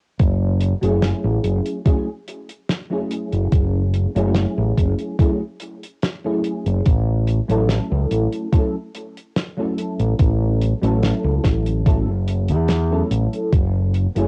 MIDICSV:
0, 0, Header, 1, 4, 480
1, 0, Start_track
1, 0, Tempo, 833333
1, 112, Time_signature, 4, 2, 24, 8
1, 8223, End_track
2, 0, Start_track
2, 0, Title_t, "FM electric piano"
2, 0, Program_c, 0, 5
2, 467, Note_on_c, 0, 54, 76
2, 473, Note_on_c, 0, 57, 66
2, 476, Note_on_c, 0, 61, 68
2, 481, Note_on_c, 0, 64, 70
2, 484, Note_on_c, 0, 68, 85
2, 1039, Note_off_c, 0, 54, 0
2, 1042, Note_off_c, 0, 57, 0
2, 1044, Note_off_c, 0, 61, 0
2, 1046, Note_off_c, 0, 64, 0
2, 1048, Note_off_c, 0, 68, 0
2, 1067, Note_on_c, 0, 54, 72
2, 1070, Note_on_c, 0, 57, 68
2, 1074, Note_on_c, 0, 61, 68
2, 1075, Note_on_c, 0, 64, 67
2, 1077, Note_on_c, 0, 68, 83
2, 1198, Note_off_c, 0, 54, 0
2, 1200, Note_off_c, 0, 57, 0
2, 1202, Note_off_c, 0, 61, 0
2, 1202, Note_off_c, 0, 64, 0
2, 1203, Note_off_c, 0, 68, 0
2, 1670, Note_on_c, 0, 54, 64
2, 1673, Note_on_c, 0, 57, 59
2, 1678, Note_on_c, 0, 61, 62
2, 1681, Note_on_c, 0, 64, 59
2, 1687, Note_on_c, 0, 68, 70
2, 2364, Note_off_c, 0, 54, 0
2, 2365, Note_off_c, 0, 57, 0
2, 2368, Note_off_c, 0, 61, 0
2, 2369, Note_off_c, 0, 64, 0
2, 2372, Note_off_c, 0, 68, 0
2, 2392, Note_on_c, 0, 54, 78
2, 2395, Note_on_c, 0, 57, 72
2, 2401, Note_on_c, 0, 61, 71
2, 2404, Note_on_c, 0, 64, 71
2, 2410, Note_on_c, 0, 68, 82
2, 2962, Note_off_c, 0, 54, 0
2, 2963, Note_off_c, 0, 57, 0
2, 2966, Note_off_c, 0, 61, 0
2, 2967, Note_off_c, 0, 64, 0
2, 2970, Note_off_c, 0, 68, 0
2, 2989, Note_on_c, 0, 54, 73
2, 2991, Note_on_c, 0, 57, 68
2, 2993, Note_on_c, 0, 61, 65
2, 2997, Note_on_c, 0, 64, 69
2, 2999, Note_on_c, 0, 68, 81
2, 3119, Note_off_c, 0, 54, 0
2, 3121, Note_off_c, 0, 57, 0
2, 3122, Note_off_c, 0, 61, 0
2, 3123, Note_off_c, 0, 64, 0
2, 3124, Note_off_c, 0, 68, 0
2, 3597, Note_on_c, 0, 54, 67
2, 3599, Note_on_c, 0, 57, 66
2, 3599, Note_on_c, 0, 61, 59
2, 3604, Note_on_c, 0, 64, 61
2, 3605, Note_on_c, 0, 68, 76
2, 3937, Note_off_c, 0, 54, 0
2, 3938, Note_off_c, 0, 57, 0
2, 3939, Note_off_c, 0, 61, 0
2, 3941, Note_off_c, 0, 64, 0
2, 3942, Note_off_c, 0, 68, 0
2, 4310, Note_on_c, 0, 54, 79
2, 4313, Note_on_c, 0, 57, 73
2, 4319, Note_on_c, 0, 61, 69
2, 4324, Note_on_c, 0, 64, 73
2, 4328, Note_on_c, 0, 69, 84
2, 4880, Note_off_c, 0, 54, 0
2, 4882, Note_off_c, 0, 57, 0
2, 4885, Note_off_c, 0, 61, 0
2, 4887, Note_off_c, 0, 64, 0
2, 4889, Note_off_c, 0, 69, 0
2, 4909, Note_on_c, 0, 54, 78
2, 4911, Note_on_c, 0, 57, 64
2, 4913, Note_on_c, 0, 61, 64
2, 4916, Note_on_c, 0, 64, 66
2, 4916, Note_on_c, 0, 69, 83
2, 5039, Note_off_c, 0, 54, 0
2, 5040, Note_off_c, 0, 57, 0
2, 5041, Note_off_c, 0, 61, 0
2, 5043, Note_off_c, 0, 64, 0
2, 5043, Note_off_c, 0, 69, 0
2, 5511, Note_on_c, 0, 54, 68
2, 5516, Note_on_c, 0, 57, 63
2, 5520, Note_on_c, 0, 61, 65
2, 5525, Note_on_c, 0, 64, 61
2, 5527, Note_on_c, 0, 69, 71
2, 6204, Note_off_c, 0, 54, 0
2, 6207, Note_off_c, 0, 57, 0
2, 6209, Note_off_c, 0, 61, 0
2, 6211, Note_off_c, 0, 64, 0
2, 6213, Note_off_c, 0, 69, 0
2, 6230, Note_on_c, 0, 54, 78
2, 6234, Note_on_c, 0, 57, 69
2, 6239, Note_on_c, 0, 61, 69
2, 6242, Note_on_c, 0, 64, 72
2, 6246, Note_on_c, 0, 69, 82
2, 6800, Note_off_c, 0, 54, 0
2, 6803, Note_off_c, 0, 57, 0
2, 6805, Note_off_c, 0, 61, 0
2, 6806, Note_off_c, 0, 64, 0
2, 6809, Note_off_c, 0, 69, 0
2, 6830, Note_on_c, 0, 54, 71
2, 6833, Note_on_c, 0, 57, 64
2, 6834, Note_on_c, 0, 61, 68
2, 6836, Note_on_c, 0, 64, 68
2, 6840, Note_on_c, 0, 69, 81
2, 6960, Note_off_c, 0, 54, 0
2, 6961, Note_off_c, 0, 57, 0
2, 6962, Note_off_c, 0, 61, 0
2, 6963, Note_off_c, 0, 64, 0
2, 6965, Note_off_c, 0, 69, 0
2, 7434, Note_on_c, 0, 54, 64
2, 7436, Note_on_c, 0, 57, 62
2, 7439, Note_on_c, 0, 61, 63
2, 7440, Note_on_c, 0, 64, 61
2, 7444, Note_on_c, 0, 69, 73
2, 7776, Note_off_c, 0, 54, 0
2, 7777, Note_off_c, 0, 57, 0
2, 7778, Note_off_c, 0, 61, 0
2, 7779, Note_off_c, 0, 64, 0
2, 7781, Note_off_c, 0, 69, 0
2, 8152, Note_on_c, 0, 54, 72
2, 8154, Note_on_c, 0, 57, 69
2, 8159, Note_on_c, 0, 61, 74
2, 8165, Note_on_c, 0, 64, 72
2, 8169, Note_on_c, 0, 68, 83
2, 8223, Note_off_c, 0, 54, 0
2, 8223, Note_off_c, 0, 57, 0
2, 8223, Note_off_c, 0, 61, 0
2, 8223, Note_off_c, 0, 64, 0
2, 8223, Note_off_c, 0, 68, 0
2, 8223, End_track
3, 0, Start_track
3, 0, Title_t, "Fingered electric bass"
3, 0, Program_c, 1, 33
3, 111, Note_on_c, 1, 30, 93
3, 417, Note_off_c, 1, 30, 0
3, 477, Note_on_c, 1, 30, 92
3, 641, Note_off_c, 1, 30, 0
3, 715, Note_on_c, 1, 33, 85
3, 796, Note_off_c, 1, 33, 0
3, 829, Note_on_c, 1, 30, 81
3, 919, Note_off_c, 1, 30, 0
3, 1919, Note_on_c, 1, 30, 75
3, 1998, Note_off_c, 1, 30, 0
3, 2031, Note_on_c, 1, 30, 93
3, 2336, Note_off_c, 1, 30, 0
3, 2395, Note_on_c, 1, 30, 95
3, 2560, Note_off_c, 1, 30, 0
3, 2637, Note_on_c, 1, 33, 89
3, 2717, Note_off_c, 1, 33, 0
3, 2751, Note_on_c, 1, 30, 89
3, 2839, Note_off_c, 1, 30, 0
3, 3837, Note_on_c, 1, 30, 77
3, 3917, Note_off_c, 1, 30, 0
3, 3950, Note_on_c, 1, 33, 96
3, 4256, Note_off_c, 1, 33, 0
3, 4318, Note_on_c, 1, 33, 97
3, 4481, Note_off_c, 1, 33, 0
3, 4560, Note_on_c, 1, 37, 91
3, 4638, Note_off_c, 1, 37, 0
3, 4673, Note_on_c, 1, 33, 90
3, 4760, Note_off_c, 1, 33, 0
3, 5758, Note_on_c, 1, 33, 77
3, 5837, Note_off_c, 1, 33, 0
3, 5871, Note_on_c, 1, 33, 92
3, 6177, Note_off_c, 1, 33, 0
3, 6238, Note_on_c, 1, 33, 94
3, 6401, Note_off_c, 1, 33, 0
3, 6476, Note_on_c, 1, 37, 94
3, 6556, Note_off_c, 1, 37, 0
3, 6592, Note_on_c, 1, 33, 82
3, 6958, Note_off_c, 1, 33, 0
3, 6958, Note_on_c, 1, 30, 77
3, 7197, Note_on_c, 1, 40, 76
3, 7206, Note_off_c, 1, 30, 0
3, 7496, Note_off_c, 1, 40, 0
3, 7550, Note_on_c, 1, 33, 73
3, 7639, Note_off_c, 1, 33, 0
3, 7792, Note_on_c, 1, 30, 94
3, 8097, Note_off_c, 1, 30, 0
3, 8157, Note_on_c, 1, 30, 93
3, 8223, Note_off_c, 1, 30, 0
3, 8223, End_track
4, 0, Start_track
4, 0, Title_t, "Drums"
4, 110, Note_on_c, 9, 42, 76
4, 112, Note_on_c, 9, 36, 108
4, 167, Note_off_c, 9, 42, 0
4, 169, Note_off_c, 9, 36, 0
4, 348, Note_on_c, 9, 42, 90
4, 405, Note_off_c, 9, 42, 0
4, 476, Note_on_c, 9, 42, 61
4, 534, Note_off_c, 9, 42, 0
4, 589, Note_on_c, 9, 38, 119
4, 589, Note_on_c, 9, 42, 88
4, 647, Note_off_c, 9, 38, 0
4, 647, Note_off_c, 9, 42, 0
4, 830, Note_on_c, 9, 42, 84
4, 888, Note_off_c, 9, 42, 0
4, 955, Note_on_c, 9, 42, 69
4, 1012, Note_off_c, 9, 42, 0
4, 1070, Note_on_c, 9, 42, 77
4, 1071, Note_on_c, 9, 36, 110
4, 1127, Note_off_c, 9, 42, 0
4, 1129, Note_off_c, 9, 36, 0
4, 1313, Note_on_c, 9, 42, 81
4, 1370, Note_off_c, 9, 42, 0
4, 1436, Note_on_c, 9, 42, 69
4, 1493, Note_off_c, 9, 42, 0
4, 1551, Note_on_c, 9, 38, 98
4, 1552, Note_on_c, 9, 42, 76
4, 1609, Note_off_c, 9, 38, 0
4, 1609, Note_off_c, 9, 42, 0
4, 1791, Note_on_c, 9, 42, 85
4, 1848, Note_off_c, 9, 42, 0
4, 1916, Note_on_c, 9, 42, 57
4, 1973, Note_off_c, 9, 42, 0
4, 2029, Note_on_c, 9, 42, 88
4, 2030, Note_on_c, 9, 36, 119
4, 2087, Note_off_c, 9, 42, 0
4, 2088, Note_off_c, 9, 36, 0
4, 2269, Note_on_c, 9, 42, 82
4, 2327, Note_off_c, 9, 42, 0
4, 2397, Note_on_c, 9, 42, 60
4, 2454, Note_off_c, 9, 42, 0
4, 2504, Note_on_c, 9, 38, 102
4, 2510, Note_on_c, 9, 42, 85
4, 2561, Note_off_c, 9, 38, 0
4, 2568, Note_off_c, 9, 42, 0
4, 2751, Note_on_c, 9, 36, 61
4, 2752, Note_on_c, 9, 42, 90
4, 2808, Note_off_c, 9, 36, 0
4, 2810, Note_off_c, 9, 42, 0
4, 2873, Note_on_c, 9, 42, 56
4, 2930, Note_off_c, 9, 42, 0
4, 2991, Note_on_c, 9, 36, 115
4, 2993, Note_on_c, 9, 42, 81
4, 3048, Note_off_c, 9, 36, 0
4, 3051, Note_off_c, 9, 42, 0
4, 3225, Note_on_c, 9, 42, 89
4, 3283, Note_off_c, 9, 42, 0
4, 3360, Note_on_c, 9, 42, 65
4, 3418, Note_off_c, 9, 42, 0
4, 3469, Note_on_c, 9, 42, 82
4, 3474, Note_on_c, 9, 38, 106
4, 3527, Note_off_c, 9, 42, 0
4, 3531, Note_off_c, 9, 38, 0
4, 3709, Note_on_c, 9, 42, 85
4, 3767, Note_off_c, 9, 42, 0
4, 3836, Note_on_c, 9, 42, 57
4, 3894, Note_off_c, 9, 42, 0
4, 3948, Note_on_c, 9, 42, 81
4, 3951, Note_on_c, 9, 36, 117
4, 4006, Note_off_c, 9, 42, 0
4, 4009, Note_off_c, 9, 36, 0
4, 4189, Note_on_c, 9, 42, 90
4, 4247, Note_off_c, 9, 42, 0
4, 4318, Note_on_c, 9, 42, 64
4, 4375, Note_off_c, 9, 42, 0
4, 4429, Note_on_c, 9, 38, 106
4, 4432, Note_on_c, 9, 42, 91
4, 4487, Note_off_c, 9, 38, 0
4, 4490, Note_off_c, 9, 42, 0
4, 4672, Note_on_c, 9, 42, 88
4, 4729, Note_off_c, 9, 42, 0
4, 4796, Note_on_c, 9, 42, 67
4, 4853, Note_off_c, 9, 42, 0
4, 4912, Note_on_c, 9, 36, 115
4, 4912, Note_on_c, 9, 42, 88
4, 4969, Note_off_c, 9, 36, 0
4, 4969, Note_off_c, 9, 42, 0
4, 5153, Note_on_c, 9, 42, 85
4, 5210, Note_off_c, 9, 42, 0
4, 5283, Note_on_c, 9, 42, 60
4, 5341, Note_off_c, 9, 42, 0
4, 5393, Note_on_c, 9, 38, 111
4, 5393, Note_on_c, 9, 42, 84
4, 5451, Note_off_c, 9, 38, 0
4, 5451, Note_off_c, 9, 42, 0
4, 5634, Note_on_c, 9, 42, 89
4, 5692, Note_off_c, 9, 42, 0
4, 5758, Note_on_c, 9, 42, 57
4, 5815, Note_off_c, 9, 42, 0
4, 5870, Note_on_c, 9, 42, 82
4, 5872, Note_on_c, 9, 36, 113
4, 5927, Note_off_c, 9, 42, 0
4, 5930, Note_off_c, 9, 36, 0
4, 6114, Note_on_c, 9, 42, 79
4, 6172, Note_off_c, 9, 42, 0
4, 6239, Note_on_c, 9, 42, 58
4, 6296, Note_off_c, 9, 42, 0
4, 6352, Note_on_c, 9, 42, 75
4, 6355, Note_on_c, 9, 38, 105
4, 6409, Note_off_c, 9, 42, 0
4, 6412, Note_off_c, 9, 38, 0
4, 6588, Note_on_c, 9, 38, 56
4, 6592, Note_on_c, 9, 36, 59
4, 6594, Note_on_c, 9, 42, 84
4, 6646, Note_off_c, 9, 38, 0
4, 6650, Note_off_c, 9, 36, 0
4, 6652, Note_off_c, 9, 42, 0
4, 6717, Note_on_c, 9, 42, 65
4, 6775, Note_off_c, 9, 42, 0
4, 6832, Note_on_c, 9, 36, 116
4, 6835, Note_on_c, 9, 42, 86
4, 6890, Note_off_c, 9, 36, 0
4, 6893, Note_off_c, 9, 42, 0
4, 7072, Note_on_c, 9, 42, 87
4, 7129, Note_off_c, 9, 42, 0
4, 7191, Note_on_c, 9, 42, 68
4, 7249, Note_off_c, 9, 42, 0
4, 7305, Note_on_c, 9, 42, 83
4, 7308, Note_on_c, 9, 38, 103
4, 7362, Note_off_c, 9, 42, 0
4, 7365, Note_off_c, 9, 38, 0
4, 7551, Note_on_c, 9, 42, 89
4, 7609, Note_off_c, 9, 42, 0
4, 7679, Note_on_c, 9, 42, 54
4, 7737, Note_off_c, 9, 42, 0
4, 7791, Note_on_c, 9, 36, 116
4, 7791, Note_on_c, 9, 42, 85
4, 7848, Note_off_c, 9, 42, 0
4, 7849, Note_off_c, 9, 36, 0
4, 8030, Note_on_c, 9, 42, 76
4, 8087, Note_off_c, 9, 42, 0
4, 8156, Note_on_c, 9, 42, 58
4, 8213, Note_off_c, 9, 42, 0
4, 8223, End_track
0, 0, End_of_file